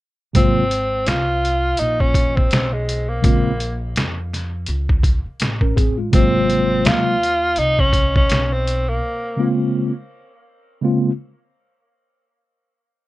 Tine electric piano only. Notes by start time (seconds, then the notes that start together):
0.33 C3 F#3 G#3 A#3 F4
3.22 C#3 G#3 A#3 C4 F4
5.62 C#4 A#4
5.76 C4 G#4
5.98 G#3 F4
6.11 C3 F#3 G#3 A#3 F4
9.37 C#3 G#3 A#3 C4 F4
10.81 C#3 G#3 A#3 C4 F4